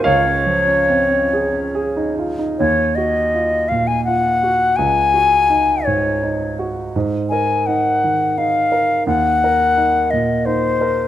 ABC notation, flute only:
X:1
M:3/4
L:1/16
Q:1/4=83
K:Ebdor
V:1 name="Flute"
d8- d2 z2 | d2 e4 f a g4 | a6 d4 z2 | z2 a2 g4 f4 |
g6 e2 c4 |]